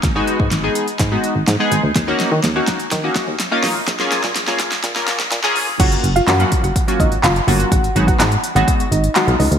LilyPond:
<<
  \new Staff \with { instrumentName = "Synth pluck" } { \time 4/4 \key fis \major \tempo 4 = 125 r1 | r1 | r1 | <fis' fis''>8 r16 <eis' eis''>16 <fis' fis''>16 r8 <fis' fis''>8 r16 <dis' dis''>16 r16 <eis' eis''>16 r16 <fis' fis''>16 r16 |
<fis' fis''>8 r16 <fis' fis''>16 <fis' fis''>16 r8 <fis' fis''>8 r16 <dis' dis''>16 r16 <fis' fis''>16 r16 <dis' dis''>16 r16 | }
  \new Staff \with { instrumentName = "Synth keys" } { \time 4/4 \key fis \major r16 <gis b dis' fis'>8 r8 <gis b dis' gis'>8 r8 <gis b dis' fis'>8 r8 <gis b dis' gis'>8 r16 | r16 <ais cis' dis' fis'>8 r8 <ais cis' dis' fis'>8 r8 <ais cis' dis' fis'>8 r8 <ais cis' dis' eis'>8 r16 | r16 <ais cis' eis' gis'>8 r8 <ais cis' eis' gis'>8 r8 <ais cis' eis' ais'>8 r8 <ais cis' eis' gis'>8 r16 | <fis ais cis' eis' fis'>8 r8. <fis ais cis' eis' fis'>8 r8 <fis ais cis' eis' fis'>8 r8. <fis ais cis' eis' fis'>8 |
r8 <fis gis b dis' fis'>8 r8. <fis gis b dis' fis'>8 r8. <fis gis b dis' eis'>8 r8 | }
  \new Staff \with { instrumentName = "FM bass" } { \clef bass \time 4/4 \key fis \major gis,,8 r16 gis,16 gis,,8 r8 gis,8 r16 gis,,16 gis,16 r16 gis,,16 d,16 | dis,8 r16 dis16 dis,8 r8 dis8 r16 dis,16 r8 a,,8 | ais,,8 r16 ais,16 ais,,8 r8 ais,8 r16 ais,,16 ais,16 r16 ais,,16 eis,,16 | fis,,8 fis,,8 fis,8 r16 fis,,16 r8 gis,,8 fis,,8 g,,8 |
gis,,8 gis,,8 gis,8 r16 gis,,16 r8 gis,,8 r16 b,,16 cis,16 d,16 | }
  \new DrumStaff \with { instrumentName = "Drums" } \drummode { \time 4/4 <hh bd sn>8 hh16 bd16 <hh sn>8 hh16 hh16 <hh bd sn>8 hh8 <hh sn>8 hh8 | <hh bd sn>8 <hh sn>8 <hh sn>8 <hh bd sn>16 hh16 <hh bd sn>8 <hh bd sn>8 <hh sn>8 <hho sn>8 | <hh bd sn>16 sn16 <hh sn>16 <bd sn>16 <hh sn>16 sn16 <hh bd sn>16 <hh sn>16 <hh bd sn>16 sn16 <hh sn>16 <hh sn>16 <hh sn>16 sn16 hho8 | <cymc hh bd>16 hh16 hh16 hh16 <hc hh sn>16 hh16 <hh bd>16 hh16 <hh bd>16 hh16 <hh bd>16 hh16 <hc hh sn>16 hh16 hho16 hh16 |
<hh bd>16 hh16 hh16 <hh bd>16 <hc hh sn>16 hh16 hh16 hh16 <hh bd>16 hh16 hh16 hh16 <hc hh sn>16 hh16 hho16 hh16 | }
>>